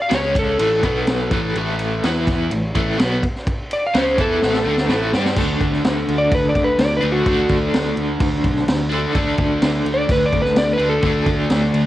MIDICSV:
0, 0, Header, 1, 5, 480
1, 0, Start_track
1, 0, Key_signature, 2, "major"
1, 0, Tempo, 478088
1, 1556, Time_signature, 4, 2, 24, 8
1, 5870, Tempo, 471698
1, 11992, End_track
2, 0, Start_track
2, 0, Title_t, "Electric slide guitar"
2, 0, Program_c, 0, 29
2, 17, Note_on_c, 0, 77, 88
2, 121, Note_off_c, 0, 77, 0
2, 146, Note_on_c, 0, 73, 79
2, 363, Note_off_c, 0, 73, 0
2, 391, Note_on_c, 0, 69, 100
2, 1307, Note_off_c, 0, 69, 0
2, 3745, Note_on_c, 0, 74, 92
2, 3848, Note_off_c, 0, 74, 0
2, 3881, Note_on_c, 0, 77, 95
2, 3977, Note_off_c, 0, 77, 0
2, 3984, Note_on_c, 0, 72, 75
2, 4204, Note_off_c, 0, 72, 0
2, 4226, Note_on_c, 0, 69, 90
2, 5139, Note_off_c, 0, 69, 0
2, 6211, Note_on_c, 0, 74, 95
2, 6357, Note_off_c, 0, 74, 0
2, 6378, Note_on_c, 0, 71, 85
2, 6521, Note_off_c, 0, 71, 0
2, 6524, Note_on_c, 0, 74, 82
2, 6674, Note_off_c, 0, 74, 0
2, 6679, Note_on_c, 0, 71, 75
2, 6832, Note_off_c, 0, 71, 0
2, 6848, Note_on_c, 0, 74, 95
2, 6996, Note_off_c, 0, 74, 0
2, 7009, Note_on_c, 0, 71, 87
2, 7157, Note_off_c, 0, 71, 0
2, 7165, Note_on_c, 0, 66, 92
2, 7626, Note_off_c, 0, 66, 0
2, 10034, Note_on_c, 0, 74, 94
2, 10188, Note_off_c, 0, 74, 0
2, 10213, Note_on_c, 0, 71, 92
2, 10356, Note_on_c, 0, 74, 83
2, 10357, Note_off_c, 0, 71, 0
2, 10508, Note_off_c, 0, 74, 0
2, 10523, Note_on_c, 0, 71, 105
2, 10672, Note_off_c, 0, 71, 0
2, 10684, Note_on_c, 0, 74, 109
2, 10832, Note_off_c, 0, 74, 0
2, 10837, Note_on_c, 0, 71, 84
2, 10989, Note_off_c, 0, 71, 0
2, 11006, Note_on_c, 0, 69, 81
2, 11462, Note_off_c, 0, 69, 0
2, 11992, End_track
3, 0, Start_track
3, 0, Title_t, "Overdriven electric guitar"
3, 0, Program_c, 1, 29
3, 94, Note_on_c, 1, 49, 84
3, 105, Note_on_c, 1, 56, 103
3, 107, Note_on_c, 1, 61, 108
3, 577, Note_off_c, 1, 49, 0
3, 583, Note_off_c, 1, 56, 0
3, 584, Note_off_c, 1, 61, 0
3, 592, Note_on_c, 1, 45, 84
3, 592, Note_on_c, 1, 52, 91
3, 602, Note_on_c, 1, 57, 99
3, 826, Note_off_c, 1, 45, 0
3, 826, Note_off_c, 1, 52, 0
3, 832, Note_off_c, 1, 57, 0
3, 842, Note_on_c, 1, 47, 101
3, 852, Note_on_c, 1, 54, 107
3, 856, Note_on_c, 1, 59, 107
3, 1312, Note_off_c, 1, 47, 0
3, 1318, Note_off_c, 1, 54, 0
3, 1320, Note_off_c, 1, 59, 0
3, 1326, Note_on_c, 1, 45, 90
3, 1337, Note_on_c, 1, 52, 96
3, 1345, Note_on_c, 1, 57, 91
3, 1554, Note_off_c, 1, 45, 0
3, 1560, Note_off_c, 1, 52, 0
3, 1564, Note_off_c, 1, 57, 0
3, 1578, Note_on_c, 1, 45, 93
3, 1585, Note_on_c, 1, 52, 100
3, 1593, Note_on_c, 1, 57, 100
3, 2040, Note_off_c, 1, 52, 0
3, 2041, Note_off_c, 1, 45, 0
3, 2049, Note_off_c, 1, 57, 0
3, 2052, Note_on_c, 1, 52, 81
3, 2060, Note_on_c, 1, 59, 95
3, 2062, Note_on_c, 1, 64, 106
3, 2516, Note_off_c, 1, 52, 0
3, 2520, Note_on_c, 1, 45, 67
3, 2522, Note_off_c, 1, 59, 0
3, 2524, Note_off_c, 1, 64, 0
3, 2531, Note_on_c, 1, 52, 65
3, 2711, Note_off_c, 1, 45, 0
3, 2717, Note_off_c, 1, 52, 0
3, 2763, Note_on_c, 1, 45, 91
3, 2768, Note_on_c, 1, 52, 98
3, 2776, Note_on_c, 1, 57, 105
3, 2986, Note_off_c, 1, 45, 0
3, 2990, Note_on_c, 1, 47, 88
3, 2996, Note_off_c, 1, 52, 0
3, 3000, Note_off_c, 1, 57, 0
3, 3002, Note_on_c, 1, 54, 94
3, 3014, Note_on_c, 1, 59, 111
3, 3227, Note_off_c, 1, 47, 0
3, 3233, Note_off_c, 1, 54, 0
3, 3239, Note_off_c, 1, 59, 0
3, 3957, Note_on_c, 1, 49, 91
3, 3973, Note_on_c, 1, 56, 103
3, 3978, Note_on_c, 1, 61, 110
3, 4190, Note_off_c, 1, 49, 0
3, 4195, Note_on_c, 1, 52, 104
3, 4198, Note_off_c, 1, 56, 0
3, 4200, Note_off_c, 1, 61, 0
3, 4210, Note_on_c, 1, 59, 85
3, 4221, Note_on_c, 1, 64, 104
3, 4428, Note_off_c, 1, 52, 0
3, 4436, Note_off_c, 1, 59, 0
3, 4437, Note_on_c, 1, 45, 89
3, 4441, Note_off_c, 1, 64, 0
3, 4453, Note_on_c, 1, 52, 89
3, 4461, Note_on_c, 1, 57, 103
3, 4667, Note_off_c, 1, 57, 0
3, 4668, Note_off_c, 1, 45, 0
3, 4672, Note_on_c, 1, 50, 102
3, 4675, Note_off_c, 1, 52, 0
3, 4679, Note_on_c, 1, 57, 107
3, 4689, Note_on_c, 1, 62, 102
3, 4906, Note_off_c, 1, 50, 0
3, 4909, Note_off_c, 1, 57, 0
3, 4910, Note_on_c, 1, 45, 89
3, 4914, Note_off_c, 1, 62, 0
3, 4921, Note_on_c, 1, 52, 92
3, 4922, Note_on_c, 1, 57, 92
3, 5144, Note_off_c, 1, 45, 0
3, 5149, Note_off_c, 1, 52, 0
3, 5150, Note_off_c, 1, 57, 0
3, 5156, Note_on_c, 1, 55, 92
3, 5168, Note_on_c, 1, 62, 106
3, 5175, Note_on_c, 1, 67, 102
3, 5360, Note_on_c, 1, 50, 87
3, 5384, Note_off_c, 1, 55, 0
3, 5388, Note_on_c, 1, 57, 87
3, 5392, Note_off_c, 1, 62, 0
3, 5396, Note_off_c, 1, 67, 0
3, 5411, Note_on_c, 1, 62, 94
3, 7047, Note_off_c, 1, 62, 0
3, 7051, Note_on_c, 1, 62, 87
3, 7075, Note_off_c, 1, 57, 0
3, 7080, Note_on_c, 1, 57, 84
3, 7093, Note_off_c, 1, 50, 0
3, 7097, Note_on_c, 1, 50, 73
3, 7284, Note_off_c, 1, 50, 0
3, 7288, Note_on_c, 1, 50, 87
3, 7313, Note_off_c, 1, 57, 0
3, 7317, Note_on_c, 1, 57, 79
3, 7339, Note_off_c, 1, 62, 0
3, 7343, Note_on_c, 1, 62, 89
3, 8966, Note_off_c, 1, 62, 0
3, 8970, Note_on_c, 1, 62, 99
3, 8994, Note_off_c, 1, 57, 0
3, 8998, Note_on_c, 1, 57, 79
3, 9009, Note_off_c, 1, 50, 0
3, 9013, Note_on_c, 1, 50, 66
3, 9207, Note_off_c, 1, 50, 0
3, 9211, Note_on_c, 1, 50, 87
3, 9238, Note_off_c, 1, 57, 0
3, 9242, Note_on_c, 1, 57, 91
3, 9260, Note_off_c, 1, 62, 0
3, 9264, Note_on_c, 1, 62, 104
3, 10878, Note_off_c, 1, 62, 0
3, 10884, Note_off_c, 1, 50, 0
3, 10891, Note_on_c, 1, 62, 83
3, 10916, Note_off_c, 1, 57, 0
3, 10920, Note_on_c, 1, 57, 89
3, 10939, Note_on_c, 1, 50, 77
3, 11122, Note_off_c, 1, 50, 0
3, 11125, Note_off_c, 1, 62, 0
3, 11134, Note_on_c, 1, 50, 86
3, 11160, Note_off_c, 1, 57, 0
3, 11164, Note_on_c, 1, 57, 97
3, 11184, Note_on_c, 1, 62, 100
3, 11992, Note_off_c, 1, 50, 0
3, 11992, Note_off_c, 1, 57, 0
3, 11992, Note_off_c, 1, 62, 0
3, 11992, End_track
4, 0, Start_track
4, 0, Title_t, "Picked electric bass"
4, 0, Program_c, 2, 34
4, 115, Note_on_c, 2, 37, 97
4, 562, Note_off_c, 2, 37, 0
4, 600, Note_on_c, 2, 33, 90
4, 821, Note_off_c, 2, 33, 0
4, 832, Note_on_c, 2, 35, 101
4, 1281, Note_off_c, 2, 35, 0
4, 1319, Note_on_c, 2, 33, 91
4, 1542, Note_off_c, 2, 33, 0
4, 1555, Note_on_c, 2, 33, 98
4, 2003, Note_off_c, 2, 33, 0
4, 2048, Note_on_c, 2, 40, 94
4, 2490, Note_off_c, 2, 40, 0
4, 2521, Note_on_c, 2, 33, 78
4, 2743, Note_off_c, 2, 33, 0
4, 2763, Note_on_c, 2, 33, 96
4, 2984, Note_off_c, 2, 33, 0
4, 3008, Note_on_c, 2, 35, 97
4, 3227, Note_off_c, 2, 35, 0
4, 3962, Note_on_c, 2, 37, 100
4, 4183, Note_off_c, 2, 37, 0
4, 4201, Note_on_c, 2, 40, 96
4, 4422, Note_off_c, 2, 40, 0
4, 4440, Note_on_c, 2, 33, 89
4, 4661, Note_off_c, 2, 33, 0
4, 4679, Note_on_c, 2, 38, 102
4, 4899, Note_off_c, 2, 38, 0
4, 4912, Note_on_c, 2, 33, 105
4, 5135, Note_off_c, 2, 33, 0
4, 5159, Note_on_c, 2, 43, 94
4, 5378, Note_off_c, 2, 43, 0
4, 5388, Note_on_c, 2, 38, 102
4, 5575, Note_off_c, 2, 38, 0
4, 5628, Note_on_c, 2, 38, 93
4, 5814, Note_off_c, 2, 38, 0
4, 5873, Note_on_c, 2, 38, 92
4, 6059, Note_off_c, 2, 38, 0
4, 6112, Note_on_c, 2, 38, 86
4, 6298, Note_off_c, 2, 38, 0
4, 6353, Note_on_c, 2, 38, 88
4, 6539, Note_off_c, 2, 38, 0
4, 6593, Note_on_c, 2, 38, 93
4, 6780, Note_off_c, 2, 38, 0
4, 6825, Note_on_c, 2, 38, 94
4, 7015, Note_off_c, 2, 38, 0
4, 7070, Note_on_c, 2, 38, 95
4, 7258, Note_off_c, 2, 38, 0
4, 7309, Note_on_c, 2, 38, 98
4, 7497, Note_off_c, 2, 38, 0
4, 7547, Note_on_c, 2, 38, 91
4, 7737, Note_off_c, 2, 38, 0
4, 7792, Note_on_c, 2, 38, 93
4, 7979, Note_off_c, 2, 38, 0
4, 8033, Note_on_c, 2, 38, 92
4, 8220, Note_off_c, 2, 38, 0
4, 8268, Note_on_c, 2, 38, 86
4, 8457, Note_off_c, 2, 38, 0
4, 8513, Note_on_c, 2, 35, 101
4, 8700, Note_off_c, 2, 35, 0
4, 8758, Note_on_c, 2, 38, 91
4, 9129, Note_off_c, 2, 38, 0
4, 9228, Note_on_c, 2, 38, 105
4, 9416, Note_off_c, 2, 38, 0
4, 9468, Note_on_c, 2, 38, 85
4, 9656, Note_off_c, 2, 38, 0
4, 9708, Note_on_c, 2, 38, 93
4, 9896, Note_off_c, 2, 38, 0
4, 9947, Note_on_c, 2, 38, 84
4, 10135, Note_off_c, 2, 38, 0
4, 10193, Note_on_c, 2, 38, 88
4, 10379, Note_off_c, 2, 38, 0
4, 10431, Note_on_c, 2, 38, 93
4, 10617, Note_off_c, 2, 38, 0
4, 10653, Note_on_c, 2, 38, 92
4, 10845, Note_off_c, 2, 38, 0
4, 10900, Note_on_c, 2, 38, 94
4, 11090, Note_off_c, 2, 38, 0
4, 11142, Note_on_c, 2, 38, 100
4, 11330, Note_off_c, 2, 38, 0
4, 11378, Note_on_c, 2, 38, 95
4, 11568, Note_off_c, 2, 38, 0
4, 11635, Note_on_c, 2, 38, 96
4, 11818, Note_off_c, 2, 38, 0
4, 11862, Note_on_c, 2, 38, 97
4, 11992, Note_off_c, 2, 38, 0
4, 11992, End_track
5, 0, Start_track
5, 0, Title_t, "Drums"
5, 109, Note_on_c, 9, 51, 98
5, 113, Note_on_c, 9, 38, 93
5, 209, Note_off_c, 9, 51, 0
5, 213, Note_off_c, 9, 38, 0
5, 354, Note_on_c, 9, 36, 96
5, 361, Note_on_c, 9, 51, 89
5, 455, Note_off_c, 9, 36, 0
5, 462, Note_off_c, 9, 51, 0
5, 595, Note_on_c, 9, 51, 117
5, 695, Note_off_c, 9, 51, 0
5, 835, Note_on_c, 9, 36, 91
5, 836, Note_on_c, 9, 51, 78
5, 936, Note_off_c, 9, 36, 0
5, 936, Note_off_c, 9, 51, 0
5, 1074, Note_on_c, 9, 51, 93
5, 1078, Note_on_c, 9, 38, 122
5, 1174, Note_off_c, 9, 51, 0
5, 1178, Note_off_c, 9, 38, 0
5, 1316, Note_on_c, 9, 51, 74
5, 1317, Note_on_c, 9, 36, 103
5, 1416, Note_off_c, 9, 51, 0
5, 1417, Note_off_c, 9, 36, 0
5, 1561, Note_on_c, 9, 51, 86
5, 1661, Note_off_c, 9, 51, 0
5, 1797, Note_on_c, 9, 51, 80
5, 1897, Note_off_c, 9, 51, 0
5, 2042, Note_on_c, 9, 51, 97
5, 2046, Note_on_c, 9, 38, 100
5, 2143, Note_off_c, 9, 51, 0
5, 2147, Note_off_c, 9, 38, 0
5, 2281, Note_on_c, 9, 36, 101
5, 2287, Note_on_c, 9, 51, 79
5, 2291, Note_on_c, 9, 38, 37
5, 2382, Note_off_c, 9, 36, 0
5, 2387, Note_off_c, 9, 51, 0
5, 2391, Note_off_c, 9, 38, 0
5, 2520, Note_on_c, 9, 51, 100
5, 2620, Note_off_c, 9, 51, 0
5, 2762, Note_on_c, 9, 51, 76
5, 2763, Note_on_c, 9, 36, 94
5, 2862, Note_off_c, 9, 51, 0
5, 2863, Note_off_c, 9, 36, 0
5, 3006, Note_on_c, 9, 51, 103
5, 3010, Note_on_c, 9, 38, 121
5, 3106, Note_off_c, 9, 51, 0
5, 3110, Note_off_c, 9, 38, 0
5, 3243, Note_on_c, 9, 36, 81
5, 3245, Note_on_c, 9, 51, 72
5, 3344, Note_off_c, 9, 36, 0
5, 3346, Note_off_c, 9, 51, 0
5, 3370, Note_on_c, 9, 38, 34
5, 3470, Note_off_c, 9, 38, 0
5, 3482, Note_on_c, 9, 36, 103
5, 3483, Note_on_c, 9, 51, 96
5, 3583, Note_off_c, 9, 36, 0
5, 3584, Note_off_c, 9, 51, 0
5, 3722, Note_on_c, 9, 51, 85
5, 3823, Note_off_c, 9, 51, 0
5, 3959, Note_on_c, 9, 51, 105
5, 3963, Note_on_c, 9, 38, 110
5, 4060, Note_off_c, 9, 51, 0
5, 4064, Note_off_c, 9, 38, 0
5, 4198, Note_on_c, 9, 51, 87
5, 4199, Note_on_c, 9, 36, 102
5, 4298, Note_off_c, 9, 51, 0
5, 4299, Note_off_c, 9, 36, 0
5, 4437, Note_on_c, 9, 38, 75
5, 4538, Note_off_c, 9, 38, 0
5, 4552, Note_on_c, 9, 38, 63
5, 4652, Note_off_c, 9, 38, 0
5, 4791, Note_on_c, 9, 38, 75
5, 4892, Note_off_c, 9, 38, 0
5, 4910, Note_on_c, 9, 38, 94
5, 5010, Note_off_c, 9, 38, 0
5, 5151, Note_on_c, 9, 38, 98
5, 5252, Note_off_c, 9, 38, 0
5, 5276, Note_on_c, 9, 38, 81
5, 5376, Note_off_c, 9, 38, 0
5, 5383, Note_on_c, 9, 49, 98
5, 5383, Note_on_c, 9, 57, 67
5, 5387, Note_on_c, 9, 36, 95
5, 5484, Note_off_c, 9, 49, 0
5, 5484, Note_off_c, 9, 57, 0
5, 5487, Note_off_c, 9, 36, 0
5, 5627, Note_on_c, 9, 36, 86
5, 5630, Note_on_c, 9, 57, 64
5, 5728, Note_off_c, 9, 36, 0
5, 5731, Note_off_c, 9, 57, 0
5, 5751, Note_on_c, 9, 38, 34
5, 5852, Note_off_c, 9, 38, 0
5, 5868, Note_on_c, 9, 57, 72
5, 5872, Note_on_c, 9, 38, 116
5, 5969, Note_off_c, 9, 57, 0
5, 5973, Note_off_c, 9, 38, 0
5, 6112, Note_on_c, 9, 57, 74
5, 6214, Note_off_c, 9, 57, 0
5, 6348, Note_on_c, 9, 36, 125
5, 6349, Note_on_c, 9, 57, 84
5, 6450, Note_off_c, 9, 36, 0
5, 6451, Note_off_c, 9, 57, 0
5, 6588, Note_on_c, 9, 36, 92
5, 6589, Note_on_c, 9, 57, 70
5, 6690, Note_off_c, 9, 36, 0
5, 6691, Note_off_c, 9, 57, 0
5, 6826, Note_on_c, 9, 57, 90
5, 6830, Note_on_c, 9, 38, 109
5, 6927, Note_off_c, 9, 57, 0
5, 6931, Note_off_c, 9, 38, 0
5, 7068, Note_on_c, 9, 57, 64
5, 7170, Note_off_c, 9, 57, 0
5, 7308, Note_on_c, 9, 57, 82
5, 7309, Note_on_c, 9, 36, 111
5, 7410, Note_off_c, 9, 57, 0
5, 7411, Note_off_c, 9, 36, 0
5, 7544, Note_on_c, 9, 57, 72
5, 7549, Note_on_c, 9, 36, 95
5, 7646, Note_off_c, 9, 57, 0
5, 7651, Note_off_c, 9, 36, 0
5, 7794, Note_on_c, 9, 57, 82
5, 7798, Note_on_c, 9, 38, 113
5, 7896, Note_off_c, 9, 57, 0
5, 7900, Note_off_c, 9, 38, 0
5, 8030, Note_on_c, 9, 57, 71
5, 8132, Note_off_c, 9, 57, 0
5, 8266, Note_on_c, 9, 57, 96
5, 8269, Note_on_c, 9, 36, 120
5, 8368, Note_off_c, 9, 57, 0
5, 8371, Note_off_c, 9, 36, 0
5, 8510, Note_on_c, 9, 36, 90
5, 8510, Note_on_c, 9, 57, 72
5, 8612, Note_off_c, 9, 36, 0
5, 8612, Note_off_c, 9, 57, 0
5, 8634, Note_on_c, 9, 38, 33
5, 8736, Note_off_c, 9, 38, 0
5, 8753, Note_on_c, 9, 57, 90
5, 8757, Note_on_c, 9, 38, 110
5, 8854, Note_off_c, 9, 57, 0
5, 8858, Note_off_c, 9, 38, 0
5, 8994, Note_on_c, 9, 57, 62
5, 9095, Note_off_c, 9, 57, 0
5, 9232, Note_on_c, 9, 36, 101
5, 9234, Note_on_c, 9, 57, 75
5, 9334, Note_off_c, 9, 36, 0
5, 9336, Note_off_c, 9, 57, 0
5, 9461, Note_on_c, 9, 57, 62
5, 9468, Note_on_c, 9, 36, 90
5, 9563, Note_off_c, 9, 57, 0
5, 9570, Note_off_c, 9, 36, 0
5, 9707, Note_on_c, 9, 57, 84
5, 9711, Note_on_c, 9, 38, 114
5, 9809, Note_off_c, 9, 57, 0
5, 9813, Note_off_c, 9, 38, 0
5, 9954, Note_on_c, 9, 57, 72
5, 10056, Note_off_c, 9, 57, 0
5, 10188, Note_on_c, 9, 36, 114
5, 10189, Note_on_c, 9, 57, 92
5, 10290, Note_off_c, 9, 36, 0
5, 10291, Note_off_c, 9, 57, 0
5, 10428, Note_on_c, 9, 36, 82
5, 10429, Note_on_c, 9, 57, 68
5, 10529, Note_off_c, 9, 36, 0
5, 10530, Note_off_c, 9, 57, 0
5, 10553, Note_on_c, 9, 38, 31
5, 10655, Note_off_c, 9, 38, 0
5, 10666, Note_on_c, 9, 57, 90
5, 10671, Note_on_c, 9, 38, 119
5, 10768, Note_off_c, 9, 57, 0
5, 10772, Note_off_c, 9, 38, 0
5, 10903, Note_on_c, 9, 57, 64
5, 11005, Note_off_c, 9, 57, 0
5, 11138, Note_on_c, 9, 57, 78
5, 11143, Note_on_c, 9, 36, 91
5, 11240, Note_off_c, 9, 57, 0
5, 11245, Note_off_c, 9, 36, 0
5, 11381, Note_on_c, 9, 36, 87
5, 11381, Note_on_c, 9, 57, 68
5, 11483, Note_off_c, 9, 36, 0
5, 11483, Note_off_c, 9, 57, 0
5, 11620, Note_on_c, 9, 57, 85
5, 11624, Note_on_c, 9, 38, 101
5, 11722, Note_off_c, 9, 57, 0
5, 11726, Note_off_c, 9, 38, 0
5, 11866, Note_on_c, 9, 57, 79
5, 11967, Note_off_c, 9, 57, 0
5, 11992, End_track
0, 0, End_of_file